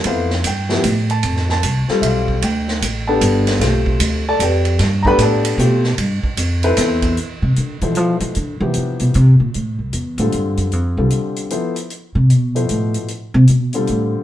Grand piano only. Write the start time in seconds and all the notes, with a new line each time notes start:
0.07 B3 E4 A4 C5 F5
0.47 G5
0.71 F3 B3 E4 G4
1.11 A5
1.51 A5
1.90 G3 C4 F4 A4
2.02 E5
2.06 F5
2.44 G5
3.07 B3 D4 G4 A4 A5
3.61 A3 C4 F4 G4
4.29 A4 D5 A5
4.42 G4 B4 D5 G5
5.03 B3 D4 G4 A4 A#5
5.07 B4 D5 G5 B5
5.22 A4 D5 A5
5.59 A3 C4 F4 G4
6.64 C4 E4 A4 B4
7.82 B2 F3 E4 A4 C5
8.61 C3 F3 B3 E4 G4
10.19 D3 G3 C4 F4 A4
10.98 D3 G3 C4 F4 A4
11.51 F3 B3 E4 A4 C5
12.55 B2 F3 E4 A4 C5
13.74 D3 G3 C4 F4 A4